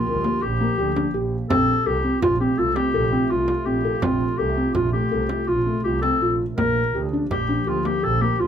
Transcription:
Already playing: analog synth pad F3 A#3 G4, clarinet F4
0.06 double bass D2, felt piano A#4
0.24 felt piano A#3, frame drum
0.42 double bass A#1, clarinet G4, felt piano G4
0.60 felt piano A#3
0.78 double bass D2, felt piano G4
0.96 felt piano D4, frame drum
1.14 double bass A#1, felt piano G4, frame drum
1.49 double bass A#1, analog synth pad C3 A3 F4, felt piano C4, clarinet A4, frame drum
1.86 double bass C2, clarinet G4, felt piano A4
2.04 felt piano C4
2.22 double bass A#1, clarinet F4, felt piano F4, frame drum
2.40 felt piano C4, clarinet G4
2.58 double bass C2, felt piano F4, clarinet A4
2.76 felt piano C4, clarinet G4, frame drum
2.94 double bass A#1, felt piano A4
3.12 felt piano C4
3.30 double bass C2, felt piano F4, clarinet F4
3.48 frame drum
3.66 double bass A#1, felt piano C4, clarinet G4, frame drum
3.84 felt piano A4
4.02 double bass A#1, felt piano C4, clarinet F4, frame drum
4.21 frame drum
4.38 double bass C2, clarinet G4, felt piano A4
4.57 felt piano C4
4.75 double bass A#1, clarinet F4, felt piano F4, frame drum
4.93 felt piano A3, clarinet G4
5.11 double bass C2, felt piano A4
5.29 felt piano A3, frame drum
5.48 double bass A#1, felt piano F4, clarinet F4
5.66 felt piano A3
5.84 double bass C2, felt piano F4, clarinet G4
6.02 felt piano C4, clarinet A4, frame drum
6.21 double bass A#1, felt piano F4
6.57 double bass A#1, analog synth pad F3 A#3 G4, felt piano A#3, clarinet A#4, frame drum
6.95 double bass D2, felt piano G4
7.13 felt piano D4
7.31 double bass A#1, felt piano G4, clarinet G4, frame drum
7.49 felt piano D4
7.67 double bass D2, clarinet F4, felt piano G4
7.85 felt piano A#3, clarinet G4, frame drum
8.03 double bass A#1, felt piano G4, clarinet A4
8.21 felt piano A#3, clarinet G4
8.39 double bass D2, felt piano F4, clarinet F4

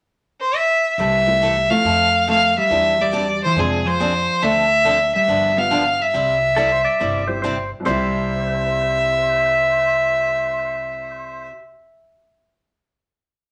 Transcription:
0.40 fiddle C5
0.56 fiddle E5
0.98 upright bass C2, steel-string acoustic guitar C3 E3 A3 E4 A4, hollow-body jazz guitar G3, fiddle E5
1.26 upright piano G3 A3 C4 E4
1.42 steel-string acoustic guitar C3 E3 A3 E4 A4
1.70 upright piano F3 A3 C4 E4, hollow-body jazz guitar A3, fiddle F5
1.84 upright bass F2, steel-string acoustic guitar F3 C4 E4 A4
2.27 steel-string acoustic guitar F3 C4 E4 A4, hollow-body jazz guitar A3, fiddle F5
2.58 hollow-body jazz guitar G3, fiddle E5
2.70 upright bass E2, steel-string acoustic guitar E3 C4 D4 G4, upright piano G3 C4 D4 E4
3.01 hollow-body jazz guitar G3, fiddle D5
3.12 steel-string acoustic guitar E3 C4 D4 G4
3.44 hollow-body jazz guitar E3, fiddle C5
3.55 upright bass F2, hollow-body jazz guitar C3, steel-string acoustic guitar F3 C4 D4 G#4, upright piano G#3 C4 D4 F4, fiddle G#4
3.86 hollow-body jazz guitar F3, fiddle C5
4.00 steel-string acoustic guitar F3 C4 D4 G#4
4.42 upright bass D2, steel-string acoustic guitar D3 F3 C4 D4 A4, hollow-body jazz guitar A3, fiddle E5
4.84 steel-string acoustic guitar D3 F3 C4 D4 A4
5.14 hollow-body jazz guitar G3, fiddle E5
5.28 upright bass G1, steel-string acoustic guitar D3 F3 B3 D4 G4
5.56 upright piano G3 B3 D4 F4, hollow-body jazz guitar B3, fiddle F5
5.71 steel-string acoustic guitar D3 F3 B3 D4 G4
6.00 hollow-body jazz guitar G3, fiddle E5
6.14 upright bass C2, steel-string acoustic guitar C3 G3 C4 E4 G4
6.56 steel-string acoustic guitar C3 G3 C4 E4 G4, electric slide guitar A4
6.72 electric slide guitar C5
6.85 electric slide guitar D5
7.00 upright bass G1, steel-string acoustic guitar C3 G3 C4 E4 G4
7.28 upright piano G3 C4 E4 G4, electric slide guitar C5
7.42 steel-string acoustic guitar C3 G3 C4 E4 G4, electric slide guitar C5
7.80 upright piano C2 C3
7.85 upright bass C2, steel-string acoustic guitar C3 G3 C4 E4 G4, hollow-body jazz guitar G3, upright piano G3, electric slide guitar C5, fiddle E5
7.90 upright piano E4 G4

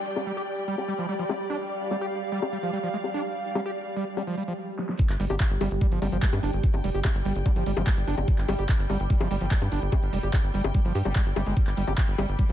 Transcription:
Already playing: synth texture G3, string section G4 D5 G5, downlifter
0.06 closed hi-hat
0.16 high bongo
0.27 acid bass G3
0.37 acid bass G4
0.47 closed hi-hat
0.68 acid bass G3
0.78 high bongo
0.88 acid bass G3, closed hi-hat
0.99 acid bass F3
1.09 acid bass G3
1.19 acid bass F3
1.29 acid bass G#3, high bongo
1.50 acid bass D4
1.57 string section F5
1.70 closed hi-hat
1.91 acid bass G3, high bongo
2.01 acid bass G4
2.12 closed hi-hat
2.32 acid bass G3, closed hi-hat
2.42 high bongo
2.53 acid bass G3
2.63 acid bass F3
2.73 acid bass G3
2.83 acid bass F3
2.94 acid bass G#3, closed hi-hat
3.04 high bongo
3.14 acid bass D4, closed hi-hat
3.35 closed hi-hat
3.45 closed hi-hat
3.55 acid bass G3, high bongo
3.66 acid bass G4
3.76 closed hi-hat
3.86 closed hi-hat
3.96 acid bass G3, closed hi-hat
4.07 closed hi-hat
4.17 acid bass G3, closed hi-hat, high bongo
4.27 acid bass F3, closed hi-hat
4.38 acid bass G3, closed hi-hat
4.48 acid bass F3, closed hi-hat
4.79 snare
4.89 snare
4.99 synth texture G3, kick, closed hi-hat
5.09 analog synth bass G1, clap, closed hi-hat
5.20 analog synth bass G1, acid bass G3, open hi-hat
5.30 analog synth bass G1, acid bass G4, closed hi-hat, high bongo
5.40 kick, clap, closed hi-hat
5.51 analog synth bass G1, closed hi-hat
5.61 analog synth bass G1, acid bass G3, open hi-hat, high bongo
5.71 analog synth bass G1, closed hi-hat
5.81 acid bass G3, kick, closed hi-hat
5.92 analog synth bass G1, acid bass F3, closed hi-hat
6.00 analog synth bass G1, acid bass G3, string section G5, open hi-hat, high bongo
6.12 analog synth bass G1, acid bass F3, closed hi-hat
6.22 acid bass G#3, kick, clap, closed hi-hat
6.33 analog synth bass G2, closed hi-hat, high bongo
6.43 analog synth bass G1, acid bass D4, open hi-hat
6.53 analog synth bass G1, closed hi-hat
6.64 kick, closed hi-hat
6.74 analog synth bass G1, closed hi-hat, high bongo
6.84 analog synth bass F1, acid bass G3, open hi-hat
6.94 analog synth bass G1, acid bass G4, closed hi-hat
7.05 kick, clap, closed hi-hat, high bongo
7.15 analog synth bass G1, closed hi-hat
7.25 analog synth bass G1, acid bass G3, open hi-hat
7.36 analog synth bass G1, closed hi-hat
7.46 acid bass G3, kick, closed hi-hat, high bongo
7.56 analog synth bass G1, acid bass F3, closed hi-hat
7.66 analog synth bass G1, acid bass G3, open hi-hat
7.77 analog synth bass G1, acid bass F3, closed hi-hat, high bongo
7.87 acid bass G#3, kick, clap, closed hi-hat
7.97 analog synth bass G1, closed hi-hat
8.07 analog synth bass G1, acid bass D4, open hi-hat
8.18 analog synth bass G1, closed hi-hat, high bongo
8.28 kick, closed hi-hat
8.38 analog synth bass G1, clap, closed hi-hat
8.48 analog synth bass G1, acid bass G3, open hi-hat, high bongo
8.59 analog synth bass G1, acid bass G4, closed hi-hat
8.69 kick, clap, closed hi-hat
8.79 analog synth bass G1, closed hi-hat
8.90 analog synth bass G1, acid bass G3, open hi-hat, high bongo
9.00 analog synth bass G1, closed hi-hat
9.10 acid bass G3, kick, closed hi-hat
9.20 analog synth bass G1, acid bass F3, closed hi-hat, high bongo
9.31 analog synth bass G1, acid bass G3, open hi-hat
9.41 analog synth bass G1, acid bass F3, closed hi-hat
9.51 acid bass G#3, kick, clap, closed hi-hat
9.62 analog synth bass G2, closed hi-hat, high bongo
9.72 analog synth bass G1, acid bass D4, open hi-hat
9.82 analog synth bass G1, closed hi-hat
9.92 kick, closed hi-hat, high bongo
10.03 analog synth bass G1, closed hi-hat
10.13 analog synth bass F1, acid bass G3, open hi-hat
10.23 analog synth bass G1, acid bass G4, closed hi-hat
10.33 kick, clap, closed hi-hat, high bongo
10.44 analog synth bass G1, closed hi-hat
10.54 analog synth bass G1, acid bass G3, open hi-hat
10.64 analog synth bass G1, closed hi-hat, high bongo
10.75 acid bass G3, kick, closed hi-hat
10.85 analog synth bass G1, acid bass F3, closed hi-hat
10.95 analog synth bass G2, acid bass G4, open hi-hat
11.05 analog synth bass G1, acid bass G3, closed hi-hat, high bongo
11.16 acid bass G3, kick, clap, closed hi-hat
11.26 analog synth bass G1, closed hi-hat
11.36 analog synth bass G1, acid bass G3, open hi-hat, high bongo
11.46 analog synth bass G1, acid bass G#3, closed hi-hat
11.57 kick, closed hi-hat
11.67 analog synth bass G1, clap, closed hi-hat
11.77 analog synth bass G1, acid bass G3, open hi-hat
11.88 analog synth bass G1, acid bass G4, closed hi-hat, high bongo
11.98 kick, clap, closed hi-hat
12.08 analog synth bass G1, closed hi-hat
12.18 analog synth bass G1, acid bass G3, open hi-hat, high bongo
12.29 analog synth bass G1, closed hi-hat
12.39 acid bass G3, kick, closed hi-hat
12.49 analog synth bass G1, acid bass F3, closed hi-hat

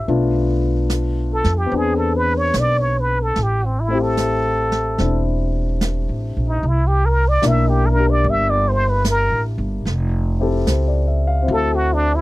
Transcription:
0.07 upright bass B1, grand piano A3 B3 D4 F4, brush sweep
0.90 snare, hi-hat pedal
1.34 muted trumpet A4
1.44 upright bass F2, snare
1.58 muted trumpet G4
1.66 grand piano B3 C4
1.72 upright bass E2, grand piano D4, brush sweep
1.78 grand piano G#4, muted trumpet G#4
1.97 muted trumpet A4
2.17 muted trumpet B4
2.37 muted trumpet C#5
2.54 upright bass B1, snare, hi-hat pedal
2.60 muted trumpet D5
2.81 muted trumpet C#5
3.01 muted trumpet B4
3.23 muted trumpet A4
3.36 upright bass A1, brush sweep, snare
3.43 muted trumpet G4
3.65 muted trumpet C4
3.80 muted trumpet E4
3.88 grand piano A3 C4
3.92 grand piano E4 G4
4.02 muted trumpet A4
4.17 snare, hi-hat pedal
4.72 snare
4.98 upright bass E1, grand piano C4 D4 E4, brush sweep, snare
5.81 snare, hi-hat pedal
6.09 upright bass A1
6.37 upright bass A#1
6.48 muted trumpet D#4
6.62 upright bass C2, brush sweep
6.69 muted trumpet E4
6.88 muted trumpet G4
7.06 muted trumpet A#4
7.29 muted trumpet D5
7.42 upright bass B1, grand piano A#3 D4 E4 A#4, snare, hi-hat pedal
7.48 muted trumpet E5
7.69 muted trumpet G4
7.86 muted trumpet A#4
7.96 grand piano D4 G4
8.10 muted trumpet D5
8.24 upright bass G1, brush sweep
8.30 muted trumpet E5
8.51 muted trumpet D5
8.69 muted trumpet C5
8.90 muted trumpet B4
9.05 snare, hi-hat pedal
9.11 muted trumpet A#4
9.31 upright bass A1
9.58 upright bass G1
9.85 upright bass F1, brush sweep, snare
10.40 grand piano C4 E4 G4 A4
10.67 upright bass C#2, grand piano C5, snare, hi-hat pedal
10.88 grand piano D5
11.08 grand piano E5
11.27 grand piano F5
11.42 grand piano C4 E4
11.48 upright bass D2, grand piano F#4, brush sweep
11.53 muted trumpet A4, grand piano A4
11.75 muted trumpet F#4
11.94 muted trumpet D4
12.16 muted trumpet E4

